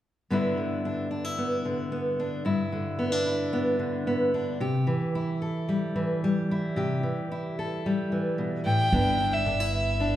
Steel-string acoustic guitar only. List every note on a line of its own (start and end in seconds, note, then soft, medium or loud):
0.30 2.44 G2 medium
0.30 0.56 D3 soft
0.30 1.38 B3 soft
0.30 0.85 D4 soft
0.30 1.10 E4 soft
0.57 1.64 D3 soft
0.85 1.10 D4 soft
1.11 1.24 D4 soft
1.24 2.44 E4 soft
1.38 1.91 B3 soft
1.65 2.71 D3 soft
1.92 2.42 B3 soft
2.20 2.42 D4 soft
2.45 4.60 G2 medium
2.45 3.26 E4 soft
2.72 3.78 D3 soft
2.99 3.12 B3 soft
3.12 4.33 D4 soft
3.26 4.61 E4 soft
3.53 4.06 B3 soft
3.79 4.60 D3 soft
4.07 4.58 B3 soft
4.34 4.58 D4 soft
4.60 4.88 C3 medium
4.60 5.41 G4 medium
4.87 5.95 E3 soft
5.15 6.51 E4 soft
5.42 6.73 A4 soft
5.69 6.24 G3 soft
5.96 7.03 E3 soft
6.24 7.85 G3 soft
6.51 7.31 E4 soft
6.76 7.03 C3 medium
6.76 7.58 G4 medium
7.03 8.11 E3 soft
7.32 8.90 E4 soft
7.59 8.90 A4 soft
7.86 8.93 G3 soft
8.12 8.90 E3 soft
8.38 8.65 B2 soft
8.66 8.92 A2 soft
8.92 9.41 G2 medium
8.92 10.16 B3 medium
8.92 9.20 D4 soft
8.92 9.46 E4 medium
9.20 9.46 D4 soft
9.46 9.95 D3 medium
9.46 9.60 D4 medium
9.60 10.16 E4 soft
10.00 10.16 D2 soft
10.00 10.16 D4 medium